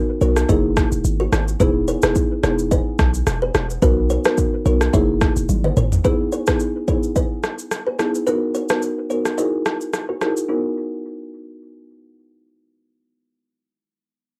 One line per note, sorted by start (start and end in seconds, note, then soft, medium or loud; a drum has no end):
0.00 0.18 B3 medium
0.00 0.18 D#4 medium
0.00 0.18 F#4 medium
0.00 0.18 A#4 medium
0.21 0.44 B1 medium
0.21 0.47 B3 medium
0.21 0.47 D#4 medium
0.21 0.47 F#4 medium
0.21 0.47 A#4 medium
0.21 0.30 A#4 medium
0.21 0.29 C#5 medium
0.21 shaker soft
0.36 cross-stick medium
0.36 shaker medium
0.49 0.85 F#1 loud
0.49 1.52 A#3 medium
0.49 1.52 D#4 medium
0.49 1.52 E4 medium
0.49 1.52 G#4 loud
0.49 0.58 A#4 medium
0.49 0.57 D#5 medium
0.49 kick medium
0.49 shaker medium
0.77 kick medium
0.77 cross-stick loud
0.77 shaker soft
0.92 1.02 E1 medium
0.92 shaker medium
1.05 1.27 G#1 loud
1.05 shaker medium
1.20 1.28 F#4 medium
1.20 1.28 A#4 medium
1.32 1.55 G#1 medium
1.32 1.41 E4 medium
1.32 1.40 G#4 medium
1.32 cross-stick loud
1.32 shaker medium
1.48 shaker medium
1.60 1.96 E1 loud
1.60 1.82 B3 loud
1.60 1.82 D#4 medium
1.60 1.82 E4 medium
1.60 1.82 G#4 loud
1.60 1.69 G#4 medium
1.60 1.68 B4 medium
1.60 kick loud
1.60 shaker medium
1.88 1.97 A#4 medium
1.88 1.96 C#5 medium
1.88 shaker medium
2.02 2.13 E1 medium
2.02 2.40 B3 medium
2.02 2.40 D#4 medium
2.02 2.41 E4 medium
2.02 2.41 G#4 medium
2.02 2.11 G#4 medium
2.02 2.11 B4 medium
2.02 cross-stick loud
2.02 shaker medium
2.15 kick loud
2.15 shaker medium
2.43 2.79 E1 loud
2.43 2.69 B3 medium
2.43 2.69 D#4 medium
2.43 2.69 E4 medium
2.43 2.69 G#4 medium
2.43 2.52 A#4 medium
2.43 2.51 C#5 medium
2.43 cross-stick medium
2.43 shaker soft
2.59 shaker medium
2.71 2.80 B4 medium
2.71 2.79 D#5 medium
2.71 kick medium
2.71 shaker medium
2.99 3.22 B1 medium
2.99 kick loud
2.99 cross-stick loud
2.99 shaker medium
3.14 shaker medium
3.27 3.50 E1 loud
3.27 cross-stick medium
3.27 shaker medium
3.42 3.50 G#4 medium
3.42 3.50 B4 medium
3.55 3.77 E1 medium
3.55 3.63 E4 medium
3.55 3.63 G#4 medium
3.55 cross-stick loud
3.55 shaker medium
3.70 shaker medium
3.82 4.18 B1 loud
3.82 4.04 B3 loud
3.82 4.04 D#4 medium
3.82 4.04 F#4 medium
3.82 3.91 F#4 medium
3.82 4.04 A#4 loud
3.82 3.90 B4 loud
3.82 kick loud
3.82 shaker medium
4.10 4.19 A#4 medium
4.10 4.18 C#5 medium
4.10 shaker medium
4.24 4.63 B3 medium
4.24 4.63 D#4 medium
4.24 4.63 F#4 medium
4.24 4.34 G#4 medium
4.24 4.63 A#4 medium
4.24 4.33 B4 medium
4.24 cross-stick loud
4.24 shaker medium
4.38 kick loud
4.38 shaker medium
4.65 4.89 B1 loud
4.65 4.91 B3 medium
4.65 4.91 D#4 medium
4.65 4.92 F#4 medium
4.65 4.92 A#4 medium
4.65 4.74 A#4 medium
4.65 4.74 C#5 medium
4.65 shaker soft
4.81 cross-stick medium
4.81 shaker medium
4.93 5.29 F#1 loud
4.93 5.96 A#3 medium
4.93 5.96 D#4 medium
4.93 5.97 E4 medium
4.93 5.97 G#4 loud
4.93 5.02 C#5 medium
4.93 5.01 E5 medium
4.93 kick medium
4.93 shaker medium
5.21 kick loud
5.21 cross-stick loud
5.21 shaker soft
5.36 5.47 E1 medium
5.36 shaker medium
5.49 5.72 G#1 medium
5.49 high tom medium
5.49 shaker medium
5.64 5.73 B4 medium
5.64 5.72 D#5 medium
5.64 mid tom medium
5.77 6.00 G#1 medium
5.77 5.86 A#4 medium
5.77 5.85 C#5 medium
5.77 mid tom loud
5.77 shaker medium
5.92 floor tom loud
5.92 shaker medium
6.04 6.26 B3 medium
6.04 6.26 D#4 medium
6.04 6.26 E4 medium
6.04 6.26 G#4 loud
6.04 6.13 G#4 medium
6.04 6.13 B4 medium
6.04 kick loud
6.04 shaker medium
6.32 6.41 A#4 medium
6.32 6.40 C#5 medium
6.32 shaker medium
6.47 6.68 B3 medium
6.47 6.68 D#4 medium
6.47 6.68 E4 medium
6.47 6.68 G#4 medium
6.47 6.56 G#4 medium
6.47 6.55 B4 medium
6.47 kick loud
6.47 cross-stick loud
6.47 shaker medium
6.60 shaker medium
6.88 7.09 B3 medium
6.88 7.09 D#4 medium
6.88 7.10 E4 medium
6.88 7.10 G#4 medium
6.88 6.97 A#4 medium
6.88 6.96 C#5 medium
6.88 kick medium
6.88 shaker soft
7.03 shaker medium
7.16 7.24 B4 medium
7.16 7.24 D#5 medium
7.16 kick medium
7.16 shaker medium
7.43 cross-stick medium
7.43 shaker soft
7.59 shaker medium
7.71 cross-stick medium
7.71 shaker medium
7.87 7.95 G#4 medium
7.87 7.94 B4 medium
7.99 8.20 B3 medium
7.99 8.21 D#4 medium
7.99 8.21 E4 medium
7.99 8.08 E4 medium
7.99 8.07 G#4 medium
7.99 8.21 G#4 medium
7.99 cross-stick medium
7.99 shaker soft
8.15 shaker medium
8.26 8.48 B3 medium
8.26 8.48 D#4 medium
8.26 8.48 F#4 medium
8.26 8.36 F#4 medium
8.26 8.48 A#4 loud
8.26 8.35 B4 medium
8.26 shaker medium
8.54 8.63 A#4 medium
8.54 8.63 C#5 medium
8.54 shaker medium
8.69 8.90 B3 medium
8.69 8.90 D#4 medium
8.69 8.90 F#4 medium
8.69 8.78 G#4 medium
8.69 8.90 A#4 medium
8.69 8.78 B4 medium
8.69 cross-stick loud
8.69 shaker medium
8.82 shaker medium
9.10 9.32 B3 medium
9.10 9.32 D#4 medium
9.10 9.32 F#4 medium
9.10 9.32 A#4 medium
9.10 9.19 A#4 medium
9.10 9.18 C#5 medium
9.10 shaker soft
9.25 cross-stick medium
9.25 shaker medium
9.38 10.15 D#4 medium
9.38 10.15 E4 medium
9.38 10.15 F#4 medium
9.38 10.15 G#4 medium
9.38 10.15 A#4 medium
9.38 9.47 A#4 medium
9.38 9.46 D#5 medium
9.38 shaker medium
9.66 cross-stick loud
9.66 shaker soft
9.81 shaker medium
9.93 cross-stick medium
9.93 shaker medium
10.09 10.17 F#4 medium
10.09 10.17 A#4 medium
10.21 10.43 D#4 medium
10.21 10.43 E4 medium
10.21 10.30 E4 medium
10.21 10.43 F#4 medium
10.21 10.29 G#4 medium
10.21 10.43 G#4 medium
10.21 10.43 A#4 medium
10.21 cross-stick medium
10.21 shaker soft
10.37 shaker medium
10.49 13.80 B3 medium
10.49 13.80 D#4 medium
10.49 10.57 D#4 medium
10.49 13.80 F#4 medium
10.49 13.81 A#4 medium